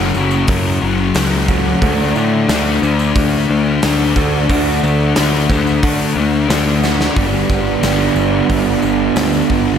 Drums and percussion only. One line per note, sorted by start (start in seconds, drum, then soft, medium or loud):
0.14 tambourine medium
0.31 tambourine medium
0.48 kick loud
0.48 open hi-hat medium
0.98 tambourine soft
1.14 snare loud
1.14 open hi-hat medium
1.14 tambourine medium
1.48 kick medium
1.48 tambourine medium
1.82 kick loud
1.82 open hi-hat soft
1.82 tambourine soft
1.98 tambourine soft
2.15 tambourine medium
2.49 snare loud
2.49 open hi-hat medium
2.49 tambourine loud
2.83 tambourine medium
2.99 tambourine medium
3.16 kick loud
3.16 open hi-hat medium
3.82 snare loud
3.82 open hi-hat medium
3.82 tambourine medium
4.16 kick medium
4.16 tambourine medium
4.49 kick medium
4.49 open hi-hat medium
4.49 tambourine soft
4.67 tambourine soft
4.84 tambourine medium
5.00 tambourine soft
5.16 snare loud
5.16 open hi-hat medium
5.16 tambourine medium
5.50 kick medium
5.50 tambourine medium
5.67 tambourine medium
5.83 kick loud
5.83 open hi-hat medium
6.17 tambourine soft
6.34 tambourine soft
6.50 snare loud
6.50 open hi-hat medium
6.50 tambourine loud
6.67 tambourine soft
6.84 snare medium
6.84 tambourine medium
7.01 snare loud
7.16 kick loud
7.16 open hi-hat medium
7.34 tambourine soft
7.50 kick medium
7.50 tambourine medium
7.66 tambourine soft
7.83 snare medium
7.83 open hi-hat medium
7.83 tambourine loud
8.00 tambourine soft
8.16 tambourine medium
8.50 kick medium
8.50 open hi-hat medium
8.82 tambourine medium
9.16 snare loud
9.16 open hi-hat medium
9.16 tambourine loud
9.33 tambourine medium
9.50 kick medium